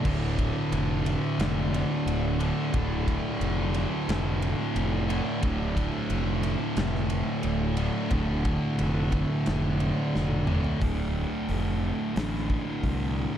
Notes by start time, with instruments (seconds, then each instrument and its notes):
0.05 fingered electric bass D1, distorted electric guitar D2 A2 D3, kick, crash
0.39 kick, ride
0.72 fingered electric bass F1, ride
1.06 ride
1.38 fingered electric bass F1, snare, ride
1.74 ride
2.06 fingered electric bass D1, ride
2.39 distorted electric guitar D2 A2 D3, ride
2.72 fingered electric bass D1, distorted electric guitar D2 A2 D3, kick, ride
3.08 kick, ride
3.40 fingered electric bass F1, ride
3.74 ride
4.08 fingered electric bass F1, snare, ride
4.42 ride
4.75 fingered electric bass F1, ride
5.08 distorted electric guitar D2 A2 D3, ride
5.42 fingered electric bass D1, distorted electric guitar D2 A2 D3, kick, ride
5.77 kick, ride
6.10 fingered electric bass F1, ride
6.43 ride
6.76 fingered electric bass F1, snare, ride
6.95 snare
7.10 ride
7.43 fingered electric bass D1, ride
7.77 distorted electric guitar D2 A2 D3, ride
8.11 fingered electric bass D1, distorted electric guitar D2 A2 D3, kick, ride
8.45 kick, ride
8.79 fingered electric bass F1, ride
9.12 kick, ride
9.46 fingered electric bass F1, snare, ride
9.80 ride
10.15 fingered electric bass F1, snare
10.31 high tom
10.47 distorted electric guitar D2 A2 D3, mid tom
10.64 floor tom
10.80 fingered electric bass D1, distorted electric guitar D2 A2 D3, kick, open hi-hat
11.49 fingered electric bass F1, open hi-hat
12.14 fingered electric bass A1, distorted electric guitar D2 A2 D3, snare, open hi-hat
12.50 kick
12.83 fingered electric bass C2, kick, open hi-hat